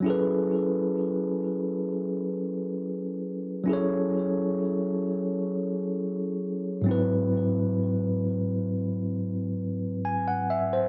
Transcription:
tine electric piano
0.00 F#3 C#4 E4
0.06 G#4 A4 B4
3.64 F#3 C#4 E4
3.69 G#4 A4 C#5
6.82 G#2 F#3
6.86 C4 E4
6.91 B4
10.05 G#5
10.27 F#5
10.50 E5
10.73 C5

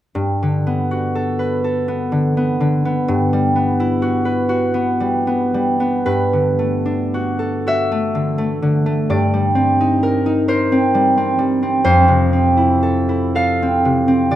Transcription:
harp
0.15 G2
0.43 D3
0.67 B3
0.91 F#4
1.15 A4
1.39 B4
1.64 A4
1.88 B3
2.12 D3
2.37 B3
2.60 D3
2.85 B3
3.08 G2
3.33 G3
3.56 B3
3.80 E4
4.02 F#4
4.25 B4
4.49 F#4
4.74 B3
5.00 G3
5.27 B3
5.54 G3
5.80 B3
6.06 G2 B4
6.33 D3
6.59 A3
6.86 D4
7.14 F#4
7.39 A4
7.67 F#4 E5
7.92 A3
8.15 D3
8.38 A3
8.62 D3
8.86 A3
9.10 G2 D5
9.34 G3
9.55 C4
9.81 D#4
10.03 A#4
10.26 D#4
10.48 A#4 C5
10.72 C4
10.94 G3
11.17 C4
11.39 G3
11.63 C4
11.84 F2 C5
12.08 C3
12.33 C4
12.57 E4
12.83 A4
13.09 E4
13.35 A4 F5
13.62 C4
13.85 C3
14.08 C4
14.31 C3 D5

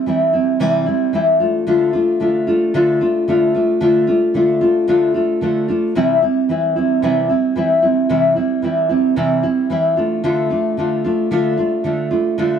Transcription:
nylon-string guitar
0.06 E3 G3 C4 E4
0.33 G3 C4 E4
0.60 C3 E3 G3 C4 E4
0.86 G3 C4 E4
1.13 E3 G3 C4 E4
1.40 A3 D4 F4
1.67 D3 A3 D4 F4
1.93 A3 D4 F4
2.20 D3 A3 D4 F4
2.47 A3 D4 F4
2.74 D3 A3 D4 F4
3.01 A3 D4 F4
3.28 D3 A3 D4 F4
3.54 A3 D4 F4
3.81 D3 A3 D4 F4
4.07 A3 D4 F4
4.34 D3 A3 D4 F4
4.61 A3 D4 F4
4.88 D3 A3 D4 F4
5.14 A3 D4 F4
5.41 D3 A3 D4 F4
5.68 A3 D4 F4
5.95 C3 E3 G3 C4 E4
6.22 G3 C4 E4
6.49 E3 G3 C4 E4
6.76 G3 C4 E4
7.02 C3 E3 G3 C4 E4
7.29 G3 C4 E4
7.56 E3 G3 C4 E4
7.82 G3 C4 E4
8.09 C3 E3 G3 C4 E4
8.36 G3 C4 E4
8.62 E3 G3 C4 E4
8.89 G3 C4 E4
9.16 C3 E3 G3 C4 E4
9.43 G3 C4 E4
9.70 E3 G3 C4 E4
9.97 A3 D4 F4
10.24 D3 A3 D4 F4
10.50 A3 D4 F4
10.77 D3 A3 D4 F4
11.04 A3 D4 F4
11.31 D3 A3 D4 F4
11.57 A3 D4 F4
11.84 D3 A3 D4 F4
12.11 A3 D4 F4
12.38 D3 A3 D4 F4

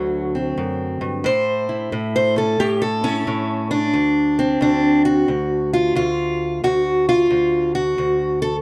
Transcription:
steel-string acoustic guitar
Already playing: D2 D3 F#3 F#4
0.35 C4
0.57 F#2
1.01 G2
1.24 A2 C5
1.69 E4
1.92 A2
2.16 C5
2.36 C#4 A4
2.60 A2 G4
2.82 A4
3.04 C#4 E4
3.27 A2
3.71 D4
3.94 D2
4.39 C4
4.61 D2 D4
5.05 F#4
5.28 D2
5.73 F4
5.95 D2 F4
6.64 D2 F#4
7.09 F4
7.30 D2
7.75 F#4
7.98 D2
8.42 A4

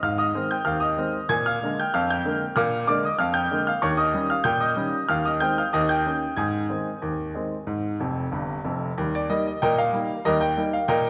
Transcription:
grand piano
0.03 G#2 F5 F6
0.18 D#5 D#6
0.34 D#3 G#3 C4
0.51 G5 G6
0.65 D#2 F5 F6
0.80 D#5 D#6
0.98 D#3 G#3 C4
1.29 A#2 G#5 G#6
1.46 F5 F6
1.63 D3 G#3 A#3
1.80 G5 G6
1.94 F2 F5 F6
2.10 G5 G6
2.25 D3 G#3 A#3
2.56 A#2 F5 D6 F6
2.87 D3 G#3 A#3 D5 D6
3.05 D#5 D#6
3.19 F2 F5 F6
3.34 G5 G6
3.51 D3 G#3 A#3
3.67 F5 F6
3.82 D#2 C#5 C#6
3.97 D#5 D#6
4.14 D#3 G3 C#4
4.30 F5 F6
4.44 A#2 G5 G6
4.60 D#5 D#6
4.76 D#3 G3 C#4
5.09 D#2 F5 F6
5.26 D#5 D#6
5.40 D#3 G#3 C4 G5 G6
5.58 F5 F6
5.73 D#2 D#5 D#6
5.89 G5 G6
6.05 D#3 A#3 C#4
6.36 G#2 G#5 D#6 G#6
6.69 D#3 G#3 C4
7.02 D#2
7.35 D#3 G#3 C4
7.67 G#2
8.00 F1 F2
8.32 G1 G2
8.65 F1 F2
8.98 D#2 G3
9.15 D5
9.29 G3 A#3 D#4 D#5
9.47 D#5
9.62 A#2 A#4 D#5 G5
9.78 F5
9.93 G3 A#3 D#4
10.25 D#2 G3 G4 A#4 D#5
10.41 G5
10.57 G3 A#3 D#4
10.73 F5
10.88 A#2 A#4 D#5 G5

